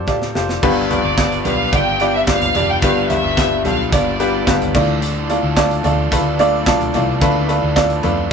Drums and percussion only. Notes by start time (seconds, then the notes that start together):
0.08 kick, snare
0.22 snare
0.35 snare
0.49 snare
0.63 kick, crash
0.91 closed hi-hat, floor tom
1.18 kick, snare, clap, closed hi-hat
1.32 closed hi-hat
1.45 closed hi-hat, floor tom
1.73 kick, closed hi-hat
2.00 closed hi-hat
2.27 kick, snare, clap, closed hi-hat
2.42 closed hi-hat, floor tom
2.55 closed hi-hat, floor tom
2.82 kick, closed hi-hat
3.10 closed hi-hat, floor tom
3.37 kick, snare, clap, closed hi-hat
3.65 closed hi-hat, floor tom
3.92 kick, closed hi-hat
4.20 closed hi-hat
4.47 kick, snare, clap, closed hi-hat
4.62 closed hi-hat, floor tom
4.75 kick, floor tom, crash
5.02 closed hi-hat
5.30 closed hi-hat
5.57 kick, snare, clap, closed hi-hat
5.71 closed hi-hat
5.84 closed hi-hat, floor tom
6.12 kick, closed hi-hat
6.39 closed hi-hat
6.66 kick, snare, clap, closed hi-hat
6.81 closed hi-hat, floor tom
6.94 closed hi-hat, floor tom
7.21 kick, closed hi-hat
7.49 closed hi-hat
7.76 kick, snare, clap, closed hi-hat
7.90 closed hi-hat
8.03 closed hi-hat, floor tom